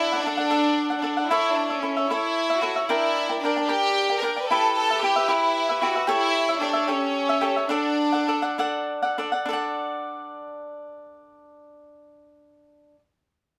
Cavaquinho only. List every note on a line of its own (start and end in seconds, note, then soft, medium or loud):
0.00 0.11 D4 medium
0.00 0.11 A4 medium
0.00 0.11 D5 medium
0.00 0.11 F#5 medium
0.12 0.25 A4 soft
0.12 0.25 D5 medium
0.12 0.24 F#5 medium
0.26 0.38 D4 medium
0.26 0.38 A4 medium
0.26 0.37 D5 medium
0.26 0.36 F#5 medium
0.37 0.49 A4 medium
0.37 0.50 D5 medium
0.37 0.50 F#5 medium
0.51 0.90 D4 medium
0.51 0.90 A4 medium
0.51 0.90 D5 medium
0.51 0.89 F#5 medium
0.90 1.02 A4 soft
0.90 1.03 D5 soft
0.90 1.03 F#5 medium
1.02 1.16 D4 medium
1.02 1.16 A4 medium
1.02 1.16 D5 medium
1.02 1.16 F#5 medium
1.17 1.30 A4 soft
1.17 1.30 D5 soft
1.17 1.30 F#5 soft
1.31 1.70 E4 medium
1.31 1.70 A4 medium
1.31 1.69 C#5 medium
1.31 1.69 E5 medium
1.70 1.81 A4 soft
1.70 1.82 C#5 soft
1.70 1.82 E5 soft
1.82 1.96 E4 medium
1.82 1.96 A4 medium
1.82 1.96 C#5 medium
1.82 1.95 E5 medium
1.97 2.09 A4 soft
1.97 2.10 C#5 medium
1.97 2.10 E5 soft
2.10 2.50 E4 medium
2.10 2.50 A4 medium
2.10 2.49 C#5 medium
2.10 2.49 E5 medium
2.50 2.61 A4 soft
2.50 2.61 C#5 soft
2.50 2.62 E5 medium
2.61 2.76 E4 medium
2.61 2.76 A4 medium
2.61 2.76 C#5 soft
2.61 2.75 E5 medium
2.76 2.89 A4 soft
2.76 2.89 C#5 soft
2.76 2.89 E5 soft
2.89 3.30 D4 medium
2.89 3.29 A#4 medium
2.89 3.28 D5 medium
2.89 3.28 G5 medium
3.29 3.43 A#4 soft
3.29 3.43 D5 soft
3.29 3.43 G5 medium
3.44 3.57 D4 medium
3.44 3.57 A#4 medium
3.44 3.56 D5 medium
3.44 3.55 G5 medium
3.56 3.67 A#4 soft
3.56 3.68 D5 medium
3.56 3.68 G5 soft
3.69 4.10 D4 medium
3.69 4.09 A#4 medium
3.69 4.08 D5 medium
3.69 4.09 G5 medium
4.09 4.22 A#4 soft
4.09 4.22 D5 soft
4.09 4.23 G5 medium
4.22 4.36 D4 medium
4.22 4.37 A#4 medium
4.22 4.36 D5 medium
4.22 4.35 G5 medium
4.36 4.50 A#4 soft
4.36 4.50 D5 soft
4.36 4.50 G5 medium
4.50 4.90 E4 medium
4.50 4.91 G4 medium
4.50 4.90 B4 medium
4.50 4.89 E5 medium
4.90 5.02 G4 soft
4.90 5.03 B4 soft
4.90 5.03 E5 medium
5.03 5.16 E4 medium
5.03 5.16 G4 medium
5.03 5.16 B4 medium
5.03 5.15 E5 medium
5.16 5.28 G4 soft
5.16 5.28 B4 medium
5.16 5.28 E5 medium
5.28 5.69 E4 medium
5.28 5.69 G4 medium
5.28 5.69 B4 medium
5.28 5.68 E5 medium
5.69 5.81 G4 soft
5.69 5.82 B4 soft
5.69 5.82 E5 soft
5.81 5.95 E4 medium
5.81 5.95 G4 medium
5.81 5.95 B4 medium
5.81 5.94 E5 medium
5.95 6.06 G4 soft
5.95 6.08 B4 soft
5.95 6.07 E5 soft
6.07 6.48 G4 medium
6.07 6.48 A4 medium
6.07 6.48 C#5 loud
6.07 6.48 E5 loud
6.49 6.60 A4 soft
6.49 6.61 C#5 medium
6.49 6.62 E5 medium
6.61 6.74 G4 medium
6.61 6.74 A4 medium
6.61 6.73 C#5 medium
6.61 6.72 E5 medium
6.73 6.88 A4 soft
6.73 6.87 C#5 medium
6.73 6.87 E5 medium
6.88 7.29 G4 medium
6.88 7.29 A4 medium
6.88 7.28 C#5 medium
6.88 7.28 E5 medium
7.29 7.41 A4 medium
7.29 7.41 C#5 soft
7.29 7.42 E5 medium
7.41 7.56 G4 medium
7.41 7.56 A4 medium
7.41 7.56 C#5 medium
7.41 7.55 E5 medium
7.56 7.69 A4 soft
7.56 7.70 C#5 soft
7.56 7.70 E5 soft
7.69 8.12 D4 loud
7.69 8.13 A4 medium
7.69 8.12 D5 medium
7.69 8.11 F#5 medium
8.12 8.27 A4 soft
8.12 8.27 D5 medium
8.12 8.27 F#5 medium
8.27 8.41 D4 medium
8.27 8.42 A4 medium
8.27 8.42 D5 medium
8.27 8.41 F#5 medium
8.42 8.57 A4 soft
8.42 8.57 D5 medium
8.42 8.56 F#5 medium
8.58 9.02 D4 medium
8.58 9.02 A4 medium
8.58 9.02 D5 medium
8.58 9.01 F#5 medium
9.02 9.17 A4 soft
9.02 9.17 D5 medium
9.02 9.17 F#5 medium
9.18 9.32 D4 medium
9.18 9.32 A4 medium
9.18 9.32 D5 medium
9.18 9.31 F#5 medium
9.32 9.48 A4 soft
9.32 9.47 D5 soft
9.32 9.47 F#5 medium
9.45 12.95 D4 medium
9.45 12.99 A4 medium
9.50 13.00 D5 medium
9.50 13.03 F#5 medium